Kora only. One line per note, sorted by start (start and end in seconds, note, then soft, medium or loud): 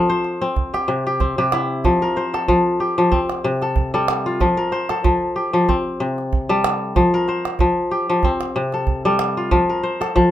0.00 0.61 F3 medium
0.00 0.41 C4 medium
0.00 0.23 G4 medium
0.00 1.09 A4 medium
0.10 1.28 C5 medium
0.42 1.20 C4 medium
0.74 1.06 G4 medium
0.88 1.37 C3 medium
1.07 1.38 G4 medium
1.20 3.00 C4 medium
1.38 1.89 C3 medium
1.38 2.79 G4 medium
1.53 2.54 E4 medium
1.85 2.47 F3 medium
2.02 3.29 A#4 medium
2.17 3.36 C5 medium
2.34 3.62 A4 medium
2.48 2.97 F3 medium
2.80 4.21 G4 medium
2.98 3.17 F3 medium
3.12 4.92 C4 medium
3.44 4.45 C3 medium
3.62 3.94 A4 medium
3.94 4.45 G3 medium
3.94 4.63 A4 medium
4.26 5.77 F4 medium
4.41 5.03 F3 medium
4.57 5.85 A#4 medium
4.72 5.91 C5 medium
4.90 6.22 A4 medium
5.04 5.52 F3 medium
5.36 6.77 G4 medium
5.53 5.73 F3 medium
5.69 7.49 C4 medium
6.00 7.01 C3 medium
6.49 7.01 G3 medium
6.49 7.20 A4 medium
6.96 7.59 F3 medium
7.14 8.41 A#4 medium
7.29 8.47 C5 medium
7.60 8.08 F3 medium
7.91 9.33 G4 medium
8.10 8.29 F3 medium
8.24 10.04 C4 medium
8.56 9.57 C3 medium
8.74 9.05 A4 medium
9.05 9.57 G3 medium
9.05 9.75 A4 medium
9.37 10.31 F4 medium
9.51 10.14 F3 medium
9.69 10.31 A#4 medium
9.83 10.31 C5 medium
10.01 10.31 A4 medium
10.16 10.31 F3 medium